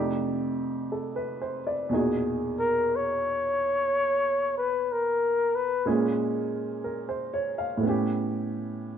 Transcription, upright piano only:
Already playing: F2 C3 A3 D4 D#4 G4
0.92 A4
1.16 B4
1.42 C5
1.67 D5
1.89 E2 A#2 B2 D#4 F#4
1.94 G#4
5.86 A#2 G#3 A#3 C#4 G#4
6.84 A#4
7.09 C5
7.34 C#5
7.58 F5
7.77 A2 A3
7.83 B3 C#4
7.89 G4

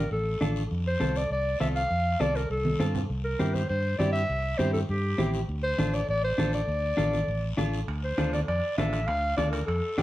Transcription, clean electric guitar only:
0.41 D4 F4 A4
1.00 C4 F4 A4
1.60 C4 F4 A4
2.20 C4 F4 A4
2.80 C4 F4 A4
3.39 C4 E4 G4
3.99 C4 E4 G4
4.59 C4 E4 G4
5.18 C4 E4 G4
5.79 D4 F4 A4
6.38 D4 F4 A4
6.97 D4 F4 A4
7.58 D4 F4 A4
8.18 D4 F4 A4
8.78 D4 F4 A4
9.38 D4 F4 A4
9.98 D4 F4 G4

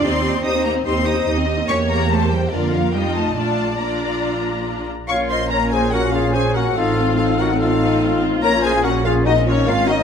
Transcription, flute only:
5.08 F5
5.31 D#5
5.52 C#5
5.71 C5
5.92 A#4
6.13 G#4
6.33 C5
6.55 A#4
6.75 A4
7.16 A4
7.39 A#4
7.57 A4
8.43 C#5
8.62 C5
8.83 A#4
9.03 G#4 A#4
9.26 F#4
9.46 F4
9.66 A#4
9.85 F#4

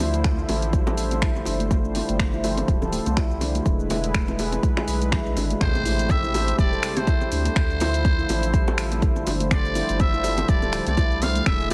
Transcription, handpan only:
0.00 E4
0.14 A3
0.39 E4
0.49 A4
0.73 G3
0.87 A4
1.12 A3
1.22 E4
1.47 D4
1.60 A3
1.71 A3
1.96 E4
2.09 A3
2.34 E4
2.44 A4
2.69 G3
2.82 A4
3.07 A3
3.17 E4
3.41 D4
3.55 A3
3.66 G#3
3.90 E4
4.04 G#3
4.28 E4
4.39 G#4
4.63 G#3
4.77 G#4
5.02 G#3
5.12 E4
5.37 D4
5.50 G#3
5.61 A3
5.86 E4
5.99 A3
6.24 E4
6.35 A4
6.59 G3
6.72 A4
6.97 A3
7.07 E4
7.32 D4
7.45 A3
7.81 E4
7.95 A3
8.19 E4
8.29 A4
8.54 G3
8.67 A4
8.92 A3
9.03 E4
9.27 D4
9.40 A3
9.76 E4
9.89 A3
10.14 E4
10.24 A4
10.49 G3
10.62 A4
10.87 A3
10.97 E4
11.22 D4
11.36 A3
11.46 G#3
11.71 E4

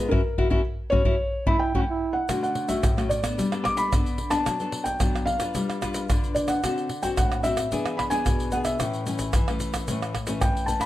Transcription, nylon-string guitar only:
0.11 C#4 E4 F#4
0.38 C#4 E4 F#4
0.50 C#4 E4 F#4
0.92 C#4 E4 F#4
1.05 C#4 E4 F#4
1.47 A3 C#4 E4
1.75 A3 C#4 E4
2.29 D3 A3 C#4 F#4
2.68 A3 C#4 F#4
2.83 A2
2.97 A3 C#4 F#4
3.23 B3 D4 A4
3.38 G3
3.52 B3 D4 A4
3.93 D3 B3 D4 A4
4.31 B3 D4 A4
4.46 F#3
4.60 B3 D4 A4
5.01 F#3 B3 D4 A4
5.40 D4 F4 B4
5.55 G3
5.82 D4 F4 B4
6.09 D3 D4 F4 B4
6.64 D3 C4 F#4 A4
7.03 C4 F#4 A4
7.18 A2
7.44 C4 F#4 A4
7.72 E3 B3 D4 G#4
8.12 B3 D4 G#4
8.25 B2
8.53 B3 D4 G#4
8.80 A2 E3 A3 C#4
9.07 E3 A3 C#4
9.35 E3
9.49 E3 A3 C#4
9.89 A2 E3 A3 C#4
10.27 E3 A3 C#4
10.44 E3
10.68 E3 A3 C#4

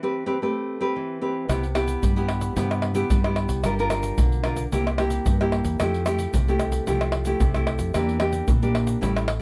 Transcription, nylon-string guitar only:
Already playing: E3
0.03 C4 G4 B4
0.26 C4 G4 B4
0.42 A3 C4 G4 B4
0.80 C4 G4 B4
0.96 E3
1.21 C4 G4 B4
1.48 C3 B3 E4 G4
1.75 B3 E4 G4
2.02 G3
2.16 B3 E4 G4
2.56 C3 B3 E4 G4
2.94 B3 E4 G4
3.11 G3
3.25 B3 E4 G4
3.65 G3 D4 F4 A#4
3.79 D4 F4 A#4
3.91 D4 F4 A#4
4.19 D3
4.44 D4 F4 A#4
4.72 C3 A#3 E4 G4
4.99 A#3 E4 G4
5.27 G2
5.41 A#3 E4 G4
5.81 F3 A3 E4 G4
6.06 A3 E4 G4
6.35 C3
6.48 A3 E4 G4
6.87 F3 A3 E4 G4
7.26 A3 E4 G4
7.41 C3
7.55 A3 E4 G4
7.95 E3 A#3 D4 G4
8.20 A#3 D4 G4
8.48 E3
8.62 A#3 D4 G4
9.01 A2 G3 C#4 E4

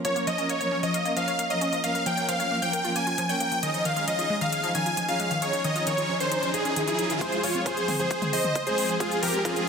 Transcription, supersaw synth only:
0.05 C#5
0.27 D#5
0.50 C#5
0.83 D#5
1.17 F5
1.50 D#5
1.84 F5
2.06 G5
2.29 F5
2.62 G5
2.96 G#5
3.29 G5
3.63 D#5
3.85 F5
4.08 D#5
4.41 F5
4.75 G#5
5.08 F5
5.42 C#5
5.64 D#5
5.87 C#5
6.20 C5
6.54 G#4
6.88 G#4
7.21 G#4 C5
7.44 F4 C#5
7.66 G#4 C5
8.00 G#4 C5
8.33 C5 D#5
8.67 G#4 C5
9.00 F4 G#4
9.23 G4 A#4
9.45 F4 G#4

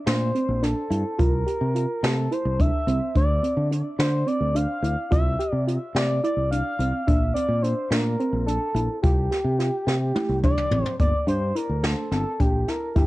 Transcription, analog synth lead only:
0.06 C5
0.63 A4
1.19 A#4
2.04 A4
2.32 C5
2.60 E5
3.17 D5
3.99 C5
4.27 D5
4.55 F5
5.12 E5
5.96 D5
6.24 D5
6.51 F5
7.07 E5
7.34 D5
7.62 C5
7.90 A#4
8.46 A4
9.02 G4
10.44 D5
11.00 D5
11.28 C5
11.56 A#4
11.84 A4
12.12 A4
12.40 G4
12.68 A#4
12.97 G4

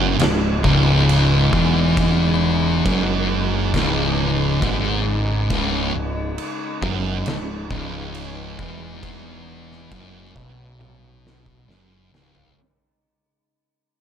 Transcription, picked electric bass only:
Already playing: F#1
0.19 C#1
0.64 C#1
1.52 E1
2.85 F#1
3.74 C#1
4.62 G#1
5.51 C#1
5.95 C#1
6.82 F#1
7.26 C#1
7.71 C#1
8.59 E1
9.91 F#1
10.36 B1
10.79 B1
11.68 F#1
12.12 C#1

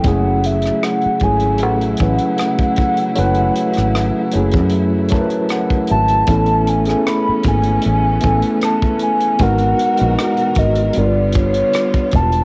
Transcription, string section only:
Already playing: C#3 A3
0.05 F#3 E4
6.28 E3 A3 B3 C#4
9.39 B2 F#4 A#4
10.95 D3 G3 B3 F4

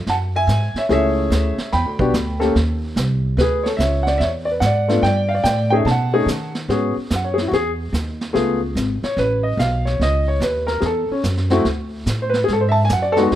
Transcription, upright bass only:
0.07 F#2
0.47 G#2
0.74 muted upright bass stroke
0.89 C#2
1.30 D2
1.73 E2
1.86 D2
1.99 B1
2.14 D2
2.55 D#2
2.96 C2
3.37 D2
3.79 C#2
4.20 E2
4.61 G#2
5.02 G2
5.44 A2
5.85 B2
6.26 D#3
6.68 G#2
6.96 muted upright bass stroke
7.11 F#2
7.51 E2
7.93 D#2
8.35 C#2
8.75 G#1
9.03 muted upright bass stroke
9.17 A1
9.57 B1
10.00 C#2
10.40 D#2
10.82 E2
11.10 muted upright bass stroke
11.24 F#2
11.65 D2
12.06 A2
12.48 G#2
12.90 F#2
13.31 E2

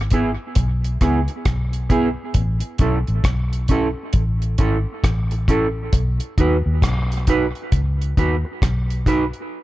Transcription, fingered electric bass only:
Already playing: G#1
0.57 B1
1.02 C#2
1.46 B1
2.35 A1
2.80 B1
3.08 A1
3.24 B1
4.14 A1
4.59 G#1
5.04 A1
5.93 B1
6.38 D#2
6.66 D#2
6.82 B1
7.73 C#2
8.18 D#2
8.62 B1

